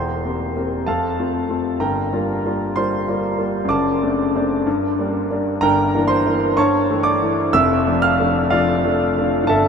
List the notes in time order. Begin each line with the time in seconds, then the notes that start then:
Already playing: E1 E2 C5 G5 C6
0.25 A#3 C4 G4
0.56 A#3 C4 G4
0.86 F2 A4 F5 A5
1.19 A3 C4 F4
1.49 A3 C4 F4
1.79 G1 G2 A#4 G5 A#5
2.12 G3 A#3 F4
2.46 G3 A#3 F4
2.76 G3 A#3 F4 C5 C6
3.08 G3 A#3 F4
3.39 G3 A#3 F4
3.65 F#2 D6
3.69 F#1 D5 A5
4.02 A3 C4 D4
4.35 A3 C4 D4
4.67 G2
4.99 G3 A#3 D4
5.31 G3 A#3 D4
5.61 G1 G2 A#4 G5 A#5
5.95 E3 A#3 D4
6.08 C5 C6
6.26 E3 A#3 D4
6.57 G2 C#5 A5 C#6
6.90 E3 A3 E4
7.03 D5 D6
7.21 E3 A3 E4
7.53 F1 F2 E5 E6
7.87 F3 A3 D4
8.02 F5 F6
8.19 F3 A3 D4
8.50 F3 A3 D4 F4 D5 F5
8.85 F3 A3 D4
9.18 F3 A3 D4
9.44 G1 G2 A5
9.49 A4 E5